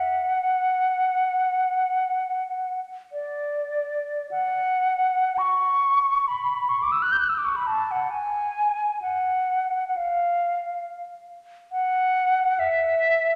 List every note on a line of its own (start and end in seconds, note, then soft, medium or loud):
0.00 2.80 F#5 medium
3.12 4.27 D5 medium
4.31 5.39 F#5 medium
5.38 6.29 C#6 medium
6.28 6.70 B5 medium
6.69 6.84 C#6 medium
6.82 6.93 D6 soft
6.92 7.04 E6 medium
7.02 7.14 F#6 medium
7.12 7.21 G6 medium
7.19 7.30 F#6 medium
7.29 7.39 E6 medium
7.38 7.47 D6 medium
7.45 7.58 C#6 medium
7.56 7.68 B5 medium
7.67 7.93 A5 medium
7.91 8.12 F#5 medium
8.10 9.01 G#5 medium
9.02 9.85 F#5 medium
9.88 9.98 F#5 soft
9.96 10.84 F5 medium
11.72 12.61 F#5 medium
12.59 13.36 E5 medium